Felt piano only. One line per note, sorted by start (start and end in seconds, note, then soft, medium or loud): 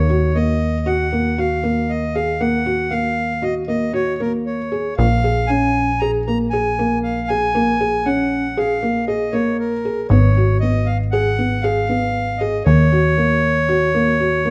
0.10 0.29 F#4 medium
0.35 0.73 A#3 medium
0.86 1.05 F#4 medium
1.12 1.31 A#3 medium
1.38 1.57 F#4 medium
1.63 2.01 A#3 medium
2.15 2.34 G#4 medium
2.41 2.59 A#3 medium
2.66 2.85 F#4 medium
2.91 3.29 A#3 medium
3.42 3.62 F#4 medium
3.68 3.87 A#3 medium
3.93 4.13 F#4 medium
4.20 4.58 A#3 medium
4.72 4.91 G#4 medium
4.98 5.17 A#3 medium
5.24 5.43 G#4 medium
5.50 5.87 C#4 medium
6.02 6.20 G#4 medium
6.28 6.46 A#3 medium
6.53 6.71 G#4 medium
6.79 7.16 A#3 medium
7.30 7.48 G#4 medium
7.55 7.73 A#3 medium
7.81 7.99 G#4 medium
8.06 8.43 C#4 medium
8.57 8.76 G#4 medium
8.83 9.01 A#3 medium
9.08 9.27 G#4 medium
9.33 9.71 A#3 medium
9.85 10.04 G#4 medium
10.11 10.30 B3 medium
10.37 10.56 F#4 medium
10.63 11.00 B3 medium
11.13 11.32 G#4 medium
11.39 11.57 B3 medium
11.64 11.83 G#4 medium
11.89 12.27 B3 medium
12.41 12.60 G#4 medium
12.66 12.85 A#3 medium
12.92 13.11 F#4 medium
13.18 13.55 A#3 medium
13.69 13.87 F#4 medium
13.94 14.13 A#3 medium
14.20 14.39 F#4 medium
14.45 14.50 A#3 medium